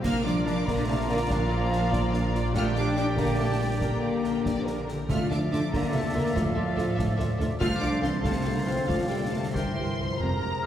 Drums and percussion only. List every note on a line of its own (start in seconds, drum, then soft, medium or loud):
0.04 concert bass drum medium
0.04 snare medium
0.04 crash medium
0.27 snare medium
0.47 snare medium
0.68 concert bass drum medium
0.68 snare medium
1.31 concert bass drum medium
1.31 snare medium
1.73 snare medium
1.93 concert bass drum medium
1.93 snare medium
2.14 snare medium
2.35 snare medium
2.55 concert bass drum medium
2.55 snare medium
2.76 snare medium
2.97 snare medium
3.18 concert bass drum medium
3.18 snare medium
3.81 concert bass drum medium
3.81 snare medium
4.24 snare medium
4.46 concert bass drum medium
4.46 snare medium
4.67 snare medium
4.89 snare medium
5.10 concert bass drum medium
5.10 snare medium
5.10 crash soft
5.31 snare medium
5.53 snare medium
5.74 concert bass drum medium
5.74 snare medium
6.37 concert bass drum medium
6.37 snare medium
6.78 snare medium
6.99 concert bass drum medium
6.99 snare medium
7.20 snare medium
7.41 snare medium
7.61 concert bass drum medium
7.61 snare medium
7.83 snare medium
8.04 snare medium
8.25 concert bass drum medium
8.25 snare medium
8.89 concert bass drum medium
8.89 snare medium
9.55 concert bass drum medium
9.55 snare medium